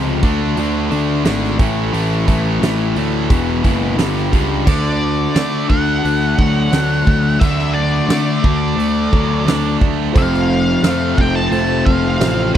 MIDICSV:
0, 0, Header, 1, 8, 480
1, 0, Start_track
1, 0, Tempo, 684932
1, 1352, Time_signature, 4, 2, 24, 8
1, 8813, End_track
2, 0, Start_track
2, 0, Title_t, "Lead electric guitar"
2, 0, Program_c, 0, 29
2, 3280, Note_on_c, 0, 74, 86
2, 3967, Note_off_c, 0, 74, 0
2, 3991, Note_on_c, 0, 78, 109
2, 5184, Note_on_c, 0, 76, 104
2, 5227, Note_off_c, 0, 78, 0
2, 5410, Note_off_c, 0, 76, 0
2, 5425, Note_on_c, 0, 74, 80
2, 6842, Note_off_c, 0, 74, 0
2, 7134, Note_on_c, 0, 77, 97
2, 7855, Note_on_c, 0, 79, 93
2, 7866, Note_off_c, 0, 77, 0
2, 7956, Note_off_c, 0, 79, 0
2, 7956, Note_on_c, 0, 81, 92
2, 8063, Note_off_c, 0, 81, 0
2, 8072, Note_on_c, 0, 81, 96
2, 8297, Note_off_c, 0, 81, 0
2, 8309, Note_on_c, 0, 77, 106
2, 8765, Note_off_c, 0, 77, 0
2, 8813, End_track
3, 0, Start_track
3, 0, Title_t, "Reed electric piano"
3, 0, Program_c, 1, 4
3, 7096, Note_on_c, 1, 65, 98
3, 7101, Note_on_c, 1, 69, 85
3, 7105, Note_on_c, 1, 72, 100
3, 7489, Note_off_c, 1, 65, 0
3, 7492, Note_off_c, 1, 69, 0
3, 7494, Note_off_c, 1, 72, 0
3, 7586, Note_on_c, 1, 65, 69
3, 7587, Note_on_c, 1, 69, 58
3, 7596, Note_on_c, 1, 72, 69
3, 7975, Note_off_c, 1, 65, 0
3, 7975, Note_off_c, 1, 69, 0
3, 7980, Note_off_c, 1, 72, 0
3, 8064, Note_on_c, 1, 65, 76
3, 8071, Note_on_c, 1, 69, 70
3, 8072, Note_on_c, 1, 72, 86
3, 8454, Note_off_c, 1, 65, 0
3, 8457, Note_off_c, 1, 69, 0
3, 8458, Note_off_c, 1, 72, 0
3, 8546, Note_on_c, 1, 65, 63
3, 8549, Note_on_c, 1, 69, 64
3, 8552, Note_on_c, 1, 72, 80
3, 8788, Note_on_c, 1, 62, 71
3, 8789, Note_off_c, 1, 72, 0
3, 8791, Note_off_c, 1, 65, 0
3, 8793, Note_off_c, 1, 69, 0
3, 8813, Note_off_c, 1, 62, 0
3, 8813, End_track
4, 0, Start_track
4, 0, Title_t, "String machine"
4, 0, Program_c, 2, 50
4, 7112, Note_on_c, 2, 72, 88
4, 7116, Note_on_c, 2, 65, 79
4, 7117, Note_on_c, 2, 60, 88
4, 7120, Note_on_c, 2, 57, 87
4, 8778, Note_off_c, 2, 72, 0
4, 8780, Note_off_c, 2, 65, 0
4, 8781, Note_off_c, 2, 60, 0
4, 8783, Note_off_c, 2, 57, 0
4, 8813, End_track
5, 0, Start_track
5, 0, Title_t, "Overdriven electric guitar"
5, 0, Program_c, 3, 29
5, 3270, Note_on_c, 3, 57, 73
5, 3281, Note_on_c, 3, 62, 88
5, 5182, Note_off_c, 3, 62, 0
5, 5201, Note_off_c, 3, 57, 0
5, 5204, Note_on_c, 3, 57, 96
5, 5209, Note_on_c, 3, 62, 96
5, 7105, Note_off_c, 3, 57, 0
5, 7108, Note_off_c, 3, 62, 0
5, 7121, Note_on_c, 3, 48, 77
5, 7126, Note_on_c, 3, 53, 89
5, 8783, Note_on_c, 3, 43, 91
5, 8785, Note_off_c, 3, 48, 0
5, 8788, Note_off_c, 3, 53, 0
5, 8813, Note_off_c, 3, 43, 0
5, 8813, End_track
6, 0, Start_track
6, 0, Title_t, "Distorted electric guitar"
6, 0, Program_c, 4, 30
6, 0, Note_on_c, 4, 41, 79
6, 0, Note_on_c, 4, 48, 79
6, 0, Note_on_c, 4, 53, 86
6, 141, Note_off_c, 4, 41, 0
6, 143, Note_off_c, 4, 48, 0
6, 143, Note_off_c, 4, 53, 0
6, 159, Note_on_c, 4, 57, 94
6, 160, Note_on_c, 4, 50, 91
6, 164, Note_on_c, 4, 62, 102
6, 388, Note_off_c, 4, 50, 0
6, 392, Note_off_c, 4, 57, 0
6, 395, Note_off_c, 4, 62, 0
6, 396, Note_on_c, 4, 50, 88
6, 400, Note_on_c, 4, 57, 92
6, 403, Note_on_c, 4, 62, 98
6, 624, Note_off_c, 4, 50, 0
6, 625, Note_off_c, 4, 57, 0
6, 630, Note_off_c, 4, 62, 0
6, 633, Note_on_c, 4, 50, 85
6, 633, Note_on_c, 4, 57, 90
6, 638, Note_on_c, 4, 62, 79
6, 861, Note_off_c, 4, 50, 0
6, 864, Note_off_c, 4, 57, 0
6, 866, Note_off_c, 4, 62, 0
6, 869, Note_on_c, 4, 50, 79
6, 872, Note_on_c, 4, 57, 88
6, 874, Note_on_c, 4, 62, 82
6, 1096, Note_off_c, 4, 50, 0
6, 1098, Note_off_c, 4, 57, 0
6, 1099, Note_off_c, 4, 62, 0
6, 1112, Note_on_c, 4, 45, 75
6, 1116, Note_on_c, 4, 52, 81
6, 1121, Note_on_c, 4, 57, 84
6, 1341, Note_off_c, 4, 45, 0
6, 1343, Note_off_c, 4, 52, 0
6, 1345, Note_off_c, 4, 57, 0
6, 1350, Note_on_c, 4, 45, 79
6, 1351, Note_on_c, 4, 52, 97
6, 1354, Note_on_c, 4, 57, 92
6, 1577, Note_off_c, 4, 45, 0
6, 1582, Note_off_c, 4, 52, 0
6, 1585, Note_on_c, 4, 45, 79
6, 1586, Note_off_c, 4, 57, 0
6, 1590, Note_on_c, 4, 52, 83
6, 1594, Note_on_c, 4, 57, 91
6, 1825, Note_off_c, 4, 45, 0
6, 1829, Note_off_c, 4, 52, 0
6, 1832, Note_off_c, 4, 57, 0
6, 1833, Note_on_c, 4, 45, 74
6, 1838, Note_on_c, 4, 52, 80
6, 1840, Note_on_c, 4, 57, 82
6, 2066, Note_off_c, 4, 45, 0
6, 2068, Note_off_c, 4, 57, 0
6, 2070, Note_off_c, 4, 52, 0
6, 2074, Note_on_c, 4, 45, 84
6, 2077, Note_on_c, 4, 57, 97
6, 2078, Note_on_c, 4, 52, 91
6, 2298, Note_off_c, 4, 45, 0
6, 2299, Note_off_c, 4, 57, 0
6, 2300, Note_off_c, 4, 52, 0
6, 2310, Note_on_c, 4, 40, 77
6, 2311, Note_on_c, 4, 47, 89
6, 2315, Note_on_c, 4, 52, 86
6, 2538, Note_off_c, 4, 40, 0
6, 2540, Note_off_c, 4, 47, 0
6, 2543, Note_off_c, 4, 52, 0
6, 2547, Note_on_c, 4, 40, 82
6, 2548, Note_on_c, 4, 47, 87
6, 2552, Note_on_c, 4, 52, 85
6, 2774, Note_off_c, 4, 40, 0
6, 2775, Note_off_c, 4, 47, 0
6, 2777, Note_off_c, 4, 52, 0
6, 2784, Note_on_c, 4, 43, 78
6, 2786, Note_on_c, 4, 50, 98
6, 2788, Note_on_c, 4, 55, 90
6, 3016, Note_off_c, 4, 43, 0
6, 3019, Note_off_c, 4, 50, 0
6, 3022, Note_off_c, 4, 55, 0
6, 3024, Note_on_c, 4, 43, 71
6, 3027, Note_on_c, 4, 50, 71
6, 3030, Note_on_c, 4, 55, 83
6, 3252, Note_off_c, 4, 50, 0
6, 3253, Note_off_c, 4, 43, 0
6, 3256, Note_off_c, 4, 55, 0
6, 3260, Note_on_c, 4, 50, 72
6, 3746, Note_on_c, 4, 57, 67
6, 3989, Note_on_c, 4, 62, 78
6, 4235, Note_off_c, 4, 57, 0
6, 4238, Note_on_c, 4, 57, 66
6, 4465, Note_off_c, 4, 50, 0
6, 4480, Note_on_c, 4, 54, 72
6, 4712, Note_off_c, 4, 62, 0
6, 4720, Note_on_c, 4, 62, 71
6, 4956, Note_off_c, 4, 57, 0
6, 4959, Note_on_c, 4, 57, 60
6, 5200, Note_on_c, 4, 50, 74
6, 5669, Note_off_c, 4, 57, 0
6, 5676, Note_off_c, 4, 54, 0
6, 5678, Note_on_c, 4, 57, 68
6, 5910, Note_off_c, 4, 62, 0
6, 5918, Note_on_c, 4, 62, 83
6, 6142, Note_off_c, 4, 57, 0
6, 6151, Note_on_c, 4, 57, 74
6, 6393, Note_on_c, 4, 54, 62
6, 6397, Note_off_c, 4, 50, 0
6, 6626, Note_off_c, 4, 62, 0
6, 6635, Note_on_c, 4, 62, 78
6, 6864, Note_off_c, 4, 57, 0
6, 6872, Note_on_c, 4, 57, 61
6, 7113, Note_off_c, 4, 57, 0
6, 7114, Note_off_c, 4, 54, 0
6, 7114, Note_off_c, 4, 62, 0
6, 7117, Note_on_c, 4, 41, 68
6, 7594, Note_on_c, 4, 57, 73
6, 7832, Note_on_c, 4, 60, 80
6, 8069, Note_off_c, 4, 57, 0
6, 8077, Note_on_c, 4, 57, 63
6, 8312, Note_on_c, 4, 53, 69
6, 8317, Note_off_c, 4, 41, 0
6, 8541, Note_off_c, 4, 60, 0
6, 8549, Note_on_c, 4, 60, 75
6, 8793, Note_off_c, 4, 60, 0
6, 8794, Note_off_c, 4, 53, 0
6, 8797, Note_off_c, 4, 57, 0
6, 8813, End_track
7, 0, Start_track
7, 0, Title_t, "Picked electric bass"
7, 0, Program_c, 5, 34
7, 0, Note_on_c, 5, 37, 80
7, 145, Note_off_c, 5, 37, 0
7, 163, Note_on_c, 5, 38, 82
7, 381, Note_off_c, 5, 38, 0
7, 399, Note_on_c, 5, 38, 77
7, 620, Note_off_c, 5, 38, 0
7, 643, Note_on_c, 5, 38, 84
7, 861, Note_off_c, 5, 38, 0
7, 874, Note_on_c, 5, 32, 82
7, 1096, Note_off_c, 5, 32, 0
7, 1118, Note_on_c, 5, 33, 85
7, 1338, Note_off_c, 5, 33, 0
7, 1354, Note_on_c, 5, 33, 84
7, 1576, Note_off_c, 5, 33, 0
7, 1597, Note_on_c, 5, 33, 83
7, 1818, Note_off_c, 5, 33, 0
7, 1830, Note_on_c, 5, 33, 81
7, 2054, Note_off_c, 5, 33, 0
7, 2073, Note_on_c, 5, 38, 80
7, 2295, Note_off_c, 5, 38, 0
7, 2315, Note_on_c, 5, 28, 81
7, 2537, Note_off_c, 5, 28, 0
7, 2553, Note_on_c, 5, 30, 78
7, 2775, Note_off_c, 5, 30, 0
7, 2792, Note_on_c, 5, 31, 87
7, 3015, Note_off_c, 5, 31, 0
7, 3035, Note_on_c, 5, 37, 94
7, 3256, Note_off_c, 5, 37, 0
7, 3272, Note_on_c, 5, 38, 96
7, 3687, Note_off_c, 5, 38, 0
7, 3754, Note_on_c, 5, 50, 83
7, 3960, Note_off_c, 5, 50, 0
7, 3997, Note_on_c, 5, 38, 85
7, 4202, Note_off_c, 5, 38, 0
7, 4238, Note_on_c, 5, 38, 89
7, 4443, Note_off_c, 5, 38, 0
7, 4473, Note_on_c, 5, 38, 84
7, 4680, Note_off_c, 5, 38, 0
7, 4711, Note_on_c, 5, 38, 89
7, 4919, Note_off_c, 5, 38, 0
7, 4955, Note_on_c, 5, 38, 89
7, 5161, Note_off_c, 5, 38, 0
7, 5193, Note_on_c, 5, 38, 89
7, 5608, Note_off_c, 5, 38, 0
7, 5665, Note_on_c, 5, 50, 78
7, 5876, Note_off_c, 5, 50, 0
7, 5916, Note_on_c, 5, 38, 77
7, 6122, Note_off_c, 5, 38, 0
7, 6142, Note_on_c, 5, 38, 77
7, 6355, Note_off_c, 5, 38, 0
7, 6396, Note_on_c, 5, 38, 83
7, 6603, Note_off_c, 5, 38, 0
7, 6626, Note_on_c, 5, 38, 95
7, 6837, Note_off_c, 5, 38, 0
7, 6878, Note_on_c, 5, 38, 87
7, 7084, Note_off_c, 5, 38, 0
7, 7118, Note_on_c, 5, 29, 89
7, 7532, Note_off_c, 5, 29, 0
7, 7590, Note_on_c, 5, 41, 87
7, 7800, Note_off_c, 5, 41, 0
7, 7835, Note_on_c, 5, 29, 85
7, 8043, Note_off_c, 5, 29, 0
7, 8070, Note_on_c, 5, 29, 87
7, 8280, Note_off_c, 5, 29, 0
7, 8318, Note_on_c, 5, 29, 88
7, 8525, Note_off_c, 5, 29, 0
7, 8556, Note_on_c, 5, 33, 95
7, 8764, Note_off_c, 5, 33, 0
7, 8813, End_track
8, 0, Start_track
8, 0, Title_t, "Drums"
8, 158, Note_on_c, 9, 46, 43
8, 160, Note_on_c, 9, 36, 92
8, 228, Note_off_c, 9, 46, 0
8, 230, Note_off_c, 9, 36, 0
8, 400, Note_on_c, 9, 46, 59
8, 470, Note_off_c, 9, 46, 0
8, 641, Note_on_c, 9, 46, 46
8, 711, Note_off_c, 9, 46, 0
8, 876, Note_on_c, 9, 46, 64
8, 881, Note_on_c, 9, 38, 108
8, 946, Note_off_c, 9, 46, 0
8, 951, Note_off_c, 9, 38, 0
8, 1006, Note_on_c, 9, 38, 31
8, 1076, Note_off_c, 9, 38, 0
8, 1117, Note_on_c, 9, 36, 99
8, 1117, Note_on_c, 9, 46, 48
8, 1187, Note_off_c, 9, 36, 0
8, 1187, Note_off_c, 9, 46, 0
8, 1360, Note_on_c, 9, 46, 66
8, 1430, Note_off_c, 9, 46, 0
8, 1597, Note_on_c, 9, 36, 77
8, 1598, Note_on_c, 9, 46, 50
8, 1667, Note_off_c, 9, 36, 0
8, 1668, Note_off_c, 9, 46, 0
8, 1842, Note_on_c, 9, 46, 62
8, 1846, Note_on_c, 9, 38, 109
8, 1912, Note_off_c, 9, 46, 0
8, 1916, Note_off_c, 9, 38, 0
8, 2075, Note_on_c, 9, 46, 49
8, 2145, Note_off_c, 9, 46, 0
8, 2314, Note_on_c, 9, 36, 101
8, 2314, Note_on_c, 9, 46, 61
8, 2384, Note_off_c, 9, 36, 0
8, 2384, Note_off_c, 9, 46, 0
8, 2554, Note_on_c, 9, 36, 76
8, 2554, Note_on_c, 9, 46, 50
8, 2624, Note_off_c, 9, 36, 0
8, 2624, Note_off_c, 9, 46, 0
8, 2793, Note_on_c, 9, 46, 68
8, 2797, Note_on_c, 9, 38, 108
8, 2863, Note_off_c, 9, 46, 0
8, 2867, Note_off_c, 9, 38, 0
8, 2924, Note_on_c, 9, 38, 28
8, 2994, Note_off_c, 9, 38, 0
8, 3034, Note_on_c, 9, 36, 78
8, 3035, Note_on_c, 9, 46, 51
8, 3104, Note_off_c, 9, 36, 0
8, 3105, Note_off_c, 9, 46, 0
8, 3273, Note_on_c, 9, 36, 103
8, 3274, Note_on_c, 9, 49, 99
8, 3343, Note_off_c, 9, 36, 0
8, 3344, Note_off_c, 9, 49, 0
8, 3752, Note_on_c, 9, 46, 54
8, 3756, Note_on_c, 9, 38, 107
8, 3822, Note_off_c, 9, 46, 0
8, 3826, Note_off_c, 9, 38, 0
8, 3993, Note_on_c, 9, 36, 78
8, 4063, Note_off_c, 9, 36, 0
8, 4240, Note_on_c, 9, 46, 48
8, 4311, Note_off_c, 9, 46, 0
8, 4475, Note_on_c, 9, 36, 78
8, 4545, Note_off_c, 9, 36, 0
8, 4712, Note_on_c, 9, 46, 57
8, 4717, Note_on_c, 9, 38, 102
8, 4783, Note_off_c, 9, 46, 0
8, 4787, Note_off_c, 9, 38, 0
8, 4955, Note_on_c, 9, 36, 88
8, 5026, Note_off_c, 9, 36, 0
8, 5195, Note_on_c, 9, 36, 102
8, 5196, Note_on_c, 9, 46, 54
8, 5265, Note_off_c, 9, 36, 0
8, 5266, Note_off_c, 9, 46, 0
8, 5321, Note_on_c, 9, 38, 30
8, 5391, Note_off_c, 9, 38, 0
8, 5675, Note_on_c, 9, 46, 55
8, 5679, Note_on_c, 9, 38, 113
8, 5745, Note_off_c, 9, 46, 0
8, 5749, Note_off_c, 9, 38, 0
8, 5915, Note_on_c, 9, 36, 85
8, 5985, Note_off_c, 9, 36, 0
8, 6165, Note_on_c, 9, 46, 50
8, 6235, Note_off_c, 9, 46, 0
8, 6397, Note_on_c, 9, 36, 81
8, 6467, Note_off_c, 9, 36, 0
8, 6642, Note_on_c, 9, 46, 56
8, 6646, Note_on_c, 9, 38, 111
8, 6712, Note_off_c, 9, 46, 0
8, 6716, Note_off_c, 9, 38, 0
8, 6877, Note_on_c, 9, 36, 85
8, 6947, Note_off_c, 9, 36, 0
8, 7118, Note_on_c, 9, 36, 110
8, 7120, Note_on_c, 9, 46, 50
8, 7188, Note_off_c, 9, 36, 0
8, 7190, Note_off_c, 9, 46, 0
8, 7244, Note_on_c, 9, 38, 30
8, 7314, Note_off_c, 9, 38, 0
8, 7594, Note_on_c, 9, 46, 53
8, 7598, Note_on_c, 9, 38, 113
8, 7664, Note_off_c, 9, 46, 0
8, 7668, Note_off_c, 9, 38, 0
8, 7835, Note_on_c, 9, 36, 83
8, 7906, Note_off_c, 9, 36, 0
8, 8075, Note_on_c, 9, 46, 49
8, 8145, Note_off_c, 9, 46, 0
8, 8315, Note_on_c, 9, 36, 77
8, 8385, Note_off_c, 9, 36, 0
8, 8555, Note_on_c, 9, 46, 50
8, 8559, Note_on_c, 9, 38, 109
8, 8625, Note_off_c, 9, 46, 0
8, 8629, Note_off_c, 9, 38, 0
8, 8813, End_track
0, 0, End_of_file